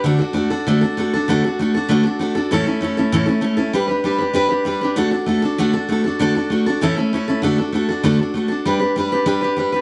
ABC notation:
X:1
M:4/4
L:1/8
Q:1/4=196
K:D
V:1 name="Steel-string acoustic guitar"
[D,A,DFA] [DFA] [A,DFA] [DFA] [D,A,DFA] [DFA] [A,DFA] [DFA] | [D,A,DFA] [DFA] [A,DFA] [DFA] [D,A,DFA] [DFA] [A,DFA] [DFA] | [A,,E,A,CEA] [A,CEA] [A,CEA] [A,CEA] [A,,E,A,CEA] [A,CEA] [A,CEA] [A,CEA] | [G,DGB] [DGB] [G,DGB] [DGB] [G,DGB] [DGB] [G,DGB] [DGB] |
[D,A,DFA] [DFA] [A,DFA] [DFA] [D,A,DFA] [DFA] [A,DFA] [DFA] | [D,A,DFA] [DFA] [A,DFA] [DFA] [A,,E,A,CEA] [A,CEA] [A,CEA] [A,CEA] | [D,A,DFA] [DFA] [A,DFA] [DFA] [D,A,DFA] [DFA] [A,DFA] [DFA] | [G,DGB] [DGB] [G,DGB] [DGB] [G,DGB] [DGB] [G,DGB] [DGB] |]